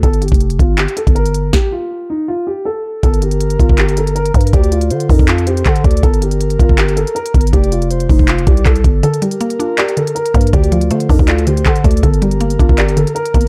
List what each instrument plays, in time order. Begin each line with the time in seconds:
0.03 808-style bass G1, grand piano A4, kick, closed hi-hat
0.13 closed hi-hat
0.22 grand piano G4, closed hi-hat
0.28 808-style bass F1, kick, closed hi-hat
0.34 closed hi-hat
0.40 closed hi-hat
0.50 closed hi-hat
0.59 808-style bass G1, grand piano F4, kick, closed hi-hat
0.78 grand piano G4, clap, closed hi-hat
0.88 closed hi-hat
0.97 grand piano A4, closed hi-hat
1.07 808-style bass G1, kick, closed hi-hat
1.15 grand piano A#4, closed hi-hat
1.26 closed hi-hat
1.34 closed hi-hat
1.53 grand piano G4, kick, snare
1.72 grand piano F4
2.10 grand piano D#4
2.28 grand piano F4
2.47 grand piano G4
2.65 grand piano A4
3.03 808-style bass G1, grand piano A4, soft synth lead A#4, kick, closed hi-hat
3.14 closed hi-hat
3.22 grand piano G4, closed hi-hat
3.31 closed hi-hat
3.41 closed hi-hat
3.50 closed hi-hat
3.59 808-style bass G1, grand piano F4, kick, closed hi-hat
3.69 kick
3.78 grand piano G4, clap, closed hi-hat
3.89 closed hi-hat
3.97 grand piano A4, closed hi-hat
4.07 closed hi-hat
4.15 grand piano A#4, closed hi-hat
4.26 closed hi-hat
4.34 808-style bass G2, kick, closed hi-hat
4.41 closed hi-hat
4.47 closed hi-hat
4.53 808-style bass D2, grand piano G4, soft synth lead D5, kick, closed hi-hat
4.64 closed hi-hat
4.72 grand piano F4, closed hi-hat
4.81 closed hi-hat
4.90 808-style bass D3, soft synth lead C5, closed hi-hat
5.00 closed hi-hat
5.09 808-style bass F2, grand piano D#4, soft synth lead A#4, kick, open hi-hat
5.19 kick
5.28 grand piano F4, soft synth lead A4, clap, closed hi-hat
5.38 closed hi-hat
5.47 grand piano G4, soft synth lead C5, closed hi-hat
5.57 closed hi-hat
5.66 808-style bass D3, grand piano A4, kick, clap, closed hi-hat
5.76 closed hi-hat
5.84 808-style bass D2, soft synth lead D5, kick, closed hi-hat
5.91 closed hi-hat
5.97 closed hi-hat
6.03 808-style bass G1, grand piano A4, soft synth lead A#4, kick, closed hi-hat
6.14 closed hi-hat
6.22 grand piano G4, closed hi-hat
6.31 closed hi-hat
6.41 closed hi-hat
6.50 closed hi-hat
6.59 808-style bass G1, grand piano F4, kick, closed hi-hat
6.69 kick
6.78 grand piano G4, clap, closed hi-hat
6.88 closed hi-hat
6.96 grand piano A4, closed hi-hat
7.07 closed hi-hat
7.15 grand piano A#4, closed hi-hat
7.26 closed hi-hat
7.34 808-style bass G1, kick, closed hi-hat
7.41 closed hi-hat
7.47 closed hi-hat
7.53 808-style bass F1, grand piano G4, soft synth lead D5, kick, closed hi-hat
7.64 closed hi-hat
7.72 grand piano F4, closed hi-hat
7.82 closed hi-hat
7.91 soft synth lead C5, closed hi-hat
8.00 closed hi-hat
8.09 808-style bass F1, grand piano D#4, soft synth lead C5, kick, open hi-hat
8.19 kick
8.28 grand piano F4, clap, closed hi-hat
8.38 closed hi-hat
8.47 808-style bass C2, grand piano G4, soft synth lead D5, kick, closed hi-hat
8.57 closed hi-hat
8.65 808-style bass C2, grand piano A4, kick, clap, closed hi-hat
8.76 closed hi-hat
8.84 808-style bass G1, kick, closed hi-hat
9.03 synth pluck D3, grand piano A4, soft synth lead A#4, closed hi-hat
9.14 closed hi-hat
9.22 synth pluck G3, grand piano G4, closed hi-hat
9.31 closed hi-hat
9.41 synth pluck A#3, closed hi-hat
9.50 closed hi-hat
9.59 synth pluck D4, grand piano F4, closed hi-hat
9.78 grand piano G4, synth pluck D5, clap, closed hi-hat
9.88 closed hi-hat
9.97 synth pluck D3, grand piano A4, closed hi-hat
10.07 closed hi-hat
10.15 grand piano A#4, closed hi-hat
10.26 closed hi-hat
10.34 808-style bass G2, synth pluck A#3, kick, closed hi-hat
10.41 closed hi-hat
10.47 closed hi-hat
10.53 808-style bass D2, synth pluck D3, grand piano G4, soft synth lead D5, kick, closed hi-hat
10.64 closed hi-hat
10.72 synth pluck F3, grand piano F4, closed hi-hat
10.81 closed hi-hat
10.91 808-style bass D3, synth pluck A3, soft synth lead C5, closed hi-hat
11.00 closed hi-hat
11.09 808-style bass F2, synth pluck D4, grand piano D#4, soft synth lead A#4, kick, open hi-hat
11.19 808-style bass D2, kick
11.28 grand piano F4, soft synth lead A4, synth pluck D5, clap, closed hi-hat
11.38 closed hi-hat
11.47 synth pluck D3, grand piano G4, soft synth lead C5, closed hi-hat
11.57 closed hi-hat
11.66 808-style bass D3, grand piano A4, kick, clap, closed hi-hat
11.76 closed hi-hat
11.84 808-style bass D2, synth pluck A3, soft synth lead D5, kick, closed hi-hat
11.91 closed hi-hat
11.97 closed hi-hat
12.03 808-style bass G1, synth pluck D3, grand piano A4, soft synth lead A#4, kick, closed hi-hat
12.14 closed hi-hat
12.22 synth pluck G3, grand piano G4, closed hi-hat
12.31 closed hi-hat
12.41 synth pluck A#3, closed hi-hat
12.50 closed hi-hat
12.59 808-style bass G1, synth pluck D4, grand piano F4, kick, closed hi-hat
12.69 808-style bass G1, kick
12.78 grand piano G4, synth pluck D5, clap, closed hi-hat
12.88 closed hi-hat
12.97 synth pluck D3, grand piano A4, closed hi-hat
13.07 closed hi-hat
13.15 grand piano A#4, closed hi-hat
13.26 closed hi-hat
13.34 808-style bass G1, synth pluck A#3, kick, closed hi-hat
13.41 closed hi-hat